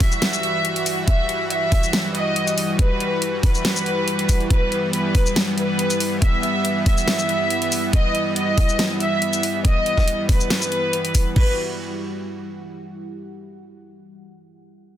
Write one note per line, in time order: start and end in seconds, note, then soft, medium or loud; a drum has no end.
0.00 11.32 E3 medium
0.00 11.32 G3 medium
0.00 11.36 G3 medium
0.00 11.35 E4 medium
0.00 4.49 F#4 loud
0.00 0.99 E5 loud
0.00 11.36 F#5 medium
0.00 kick loud
0.00 open hi-hat medium
0.12 shaker soft
0.22 snare loud
0.22 closed hi-hat medium
0.33 shaker medium
0.43 closed hi-hat medium
0.65 closed hi-hat medium
0.76 closed hi-hat medium
0.86 open hi-hat medium
0.86 shaker soft
1.08 1.44 E5 loud
1.08 kick loud
1.08 closed hi-hat medium
1.29 closed hi-hat medium
1.50 2.07 E5 loud
1.50 closed hi-hat medium
1.72 kick loud
1.72 open hi-hat medium
1.83 shaker soft
1.93 snare loud
1.93 closed hi-hat medium
2.15 2.71 D#5 medium
2.15 closed hi-hat medium
2.36 closed hi-hat medium
2.48 closed hi-hat medium
2.48 shaker medium
2.58 open hi-hat medium
2.79 3.35 B4 medium
2.79 kick loud
2.79 closed hi-hat medium
3.00 closed hi-hat medium
3.22 closed hi-hat medium
3.43 4.42 B4 loud
3.43 kick loud
3.43 open hi-hat medium
3.55 shaker medium
3.65 snare loud
3.65 closed hi-hat medium
3.76 shaker medium
3.86 closed hi-hat soft
4.08 closed hi-hat medium
4.19 closed hi-hat medium
4.29 kick medium
4.29 open hi-hat medium
4.29 shaker medium
4.40 closed hi-hat soft
4.50 11.34 B3 medium
4.50 4.86 B4 loud
4.50 kick loud
4.50 closed hi-hat medium
4.72 closed hi-hat soft
4.93 5.50 B4 medium
4.93 closed hi-hat medium
5.15 kick medium
5.15 open hi-hat medium
5.26 shaker medium
5.36 snare loud
5.36 closed hi-hat medium
5.58 6.14 B4 loud
5.58 closed hi-hat medium
5.79 closed hi-hat medium
5.90 closed hi-hat medium
5.90 shaker medium
6.00 open hi-hat medium
6.22 6.78 E5 medium
6.22 kick loud
6.22 closed hi-hat medium
6.43 closed hi-hat soft
6.65 closed hi-hat medium
6.86 7.85 E5 loud
6.86 kick medium
6.86 open hi-hat medium
6.98 shaker medium
7.08 snare loud
7.08 closed hi-hat medium
7.19 shaker medium
7.29 closed hi-hat soft
7.50 closed hi-hat medium
7.62 closed hi-hat medium
7.72 open hi-hat medium
7.72 shaker medium
7.93 8.29 D#5 loud
7.93 kick loud
7.93 closed hi-hat medium
8.15 closed hi-hat medium
8.36 8.92 D#5 medium
8.36 closed hi-hat medium
8.58 kick loud
8.58 open hi-hat medium
8.69 shaker medium
8.79 snare loud
8.79 closed hi-hat medium
9.00 9.57 E5 loud
9.00 closed hi-hat medium
9.22 closed hi-hat medium
9.33 closed hi-hat medium
9.33 shaker medium
9.43 open hi-hat loud
9.65 10.21 D#5 loud
9.65 kick loud
9.65 closed hi-hat medium
9.86 closed hi-hat medium
9.97 kick medium
9.97 snare soft
10.08 closed hi-hat medium
10.29 11.28 B4 loud
10.29 kick loud
10.29 open hi-hat medium
10.40 shaker medium
10.50 snare loud
10.50 closed hi-hat medium
10.62 shaker medium
10.72 closed hi-hat medium
10.93 closed hi-hat medium
11.05 closed hi-hat medium
11.15 kick medium
11.15 open hi-hat loud
11.15 shaker medium
11.36 11.56 E3 medium
11.36 11.56 G3 medium
11.36 13.04 E4 medium
11.36 11.56 F#4 medium
11.36 11.52 B4 medium
11.36 kick loud
11.36 crash medium
11.43 13.04 G4 medium
11.49 13.04 F#5 medium